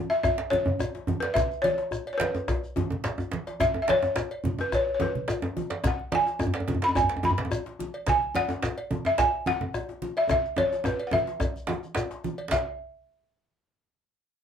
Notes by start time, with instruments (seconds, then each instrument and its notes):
0.10 balafon E5, djembe slap, shekere
0.23 balafon E5, bombo rim, bombo low, cowbell, high conga, djembe bass, shekere
0.38 djembe slap
0.50 balafon C#5, djembe tone, high conga
0.66 djembe bass, low conga
0.79 bombo rim, cowbell, djembe tone, high conga, djembe bass, shekere
0.95 djembe slap, high conga
1.07 djembe tone, high conga, djembe bass
1.20 balafon B4, cowbell, djembe slap
1.34 balafon E5, bombo rim, bombo low, djembe slap, djembe tone, djembe bass, low conga, shekere
1.51 bombo rim, shekere
1.62 balafon C#5, cowbell, djembe tone, high conga
1.78 djembe slap
1.91 bombo rim, djembe bass, shekere
2.06 cowbell, djembe slap
2.13 balafon C#5
2.18 balafon B4, djembe slap, djembe tone, high conga
2.34 djembe slap, djembe tone, shekere
2.48 bombo rim, bombo low, cowbell, djembe slap, djembe bass, shekere
2.64 shekere
2.76 djembe slap, djembe tone, high conga, djembe bass, shekere
2.90 djembe slap, djembe tone, low conga
3.04 bombo rim, cowbell, djembe slap, djembe bass, shekere
3.18 djembe tone, djembe bass, shekere
3.31 djembe slap, high conga
3.47 bombo rim, cowbell, djembe slap, high conga, shekere
3.60 balafon E5, bombo rim, bombo low, djembe slap, high conga, djembe bass, low conga, shekere
3.74 djembe tone, high conga
3.82 balafon E5
3.88 balafon C#5, cowbell, djembe slap, djembe tone, high conga
4.02 djembe slap, djembe tone, high conga, shekere
4.16 bombo rim, djembe slap, djembe bass, shekere
4.31 cowbell
4.44 djembe tone, high conga, djembe bass, low conga
4.59 balafon B4, djembe slap, djembe tone, shekere
4.72 balafon C#5, bombo rim, bombo low, cowbell, high conga, djembe bass, shekere
4.87 djembe slap
4.94 balafon C#5
5.00 balafon B4, djembe slap, djembe tone, high conga
5.15 djembe slap, low conga
5.28 bombo rim, cowbell, djembe slap, high conga, djembe bass, shekere
5.42 djembe slap, djembe tone, high conga
5.57 djembe tone, high conga
5.70 cowbell, djembe slap
5.84 balafon F#5, bombo rim, bombo low, djembe slap, djembe tone, high conga, djembe bass, low conga, shekere
5.99 high conga
6.12 balafon G#5, cowbell, djembe slap, djembe tone, high conga
6.27 djembe slap, high conga, shekere
6.39 bombo rim, djembe tone, djembe bass, shekere
6.47 djembe bass
6.54 cowbell, djembe slap
6.60 djembe tone
6.68 djembe tone, high conga, low conga
6.75 djembe bass
6.82 balafon B5, djembe slap, shekere
6.89 djembe tone
6.95 balafon G#5, bombo rim, bombo low, cowbell, djembe tone, high conga, djembe bass, shekere
7.02 djembe bass
7.09 djembe slap
7.17 djembe tone
7.23 balafon B5, djembe slap, djembe tone, high conga
7.31 djembe bass
7.38 djembe slap, low conga
7.45 djembe tone
7.51 bombo rim, cowbell, high conga, djembe bass, shekere
7.66 djembe slap, high conga
7.79 djembe tone, high conga
7.94 cowbell
8.07 balafon G#5, bombo rim, bombo low, djembe slap, high conga, low conga, djembe bass, shekere
8.23 high conga
8.35 balafon F#5, cowbell, djembe tone, high conga
8.49 djembe slap, djembe tone, high conga, shekere
8.62 bombo rim, djembe slap, djembe bass, shekere
8.78 cowbell
8.91 djembe tone, high conga, low conga
9.05 balafon E5, djembe slap, djembe tone, shekere
9.18 balafon G#5, bombo rim, bombo low, cowbell, djembe slap, high conga, djembe bass, shekere
9.33 djembe slap
9.46 balafon F#5, djembe slap, high conga, djembe tone
9.61 djembe slap, djembe tone, low conga
9.74 bombo rim, cowbell, high conga, djembe bass, shekere
9.89 djembe slap, high conga
10.02 djembe tone, high conga
10.17 balafon E5, cowbell
10.29 balafon E5, bombo rim, bombo low, djembe slap, djembe tone, high conga, djembe bass, low conga, shekere
10.44 bombo rim, shekere
10.56 balafon C#5, cowbell, djembe slap, djembe tone, high conga
10.72 bombo rim, djembe slap, high conga, shekere
10.84 balafon B4, bombo rim, djembe tone, djembe bass, shekere
11.00 cowbell
11.07 balafon F#5
11.11 balafon E5, djembe tone, high conga, low conga
11.13 djembe tone
11.27 djembe slap, high conga, shekere
11.40 bombo rim, bombo low, cowbell, djembe slap, djembe tone, high conga, djembe bass, shekere
11.56 high conga, shekere
11.67 djembe slap, djembe tone, high conga
11.83 bombo rim, djembe slap, shekere
11.95 bombo rim, cowbell, djembe slap, djembe bass, shekere
12.11 djembe slap, shekere
12.24 bombo rim, djembe tone, high conga, shekere
12.38 cowbell, high conga
12.51 balafon E5, bombo low, cowbell, djembe slap, djembe bass, low conga, shekere